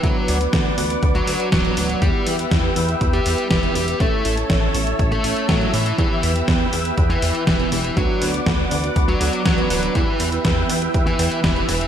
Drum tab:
HH |x-oxx-oxxxoxxxox|x-oxx-oxxxoxxxox|x-oxx-oxxxoxxxox|x-oxx-oxxxoxxxox|
SD |----o-------o---|----o-------o---|----o-------o---|----o-------o---|
BD |o---o---o---o---|o---o---o---o---|o---o---o---o---|o---o---o---o---|

HH |x-oxx-oxxxoxxxox|x-oxx-oxxxoxxxox|
SD |----o-------o---|----o-------o---|
BD |o---o---o---o---|o---o---o---o---|